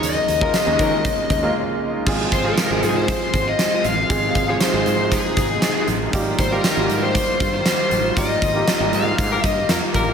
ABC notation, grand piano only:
X:1
M:4/4
L:1/16
Q:1/4=118
K:Fm
V:1 name="Grand piano"
[A,B,DE]2 z [A,B,DF] z [A,B,DE]4 z2 [A,B,DF]3 z2 | [F,A,CFA]2 z [F,A,CFA] z [F,A,CFA]6 z4 z | [F,A,CFA]2 z [F,A,CFA] z [F,A,CFA]6 z4 z | [G,B,EFG]2 z [G,B,EFG] z [G,B,EF_G=G]6 z4 z |
[G,B,EFG]2 z [G,B,EFG] z [G,B,EFG]6 z4 z |]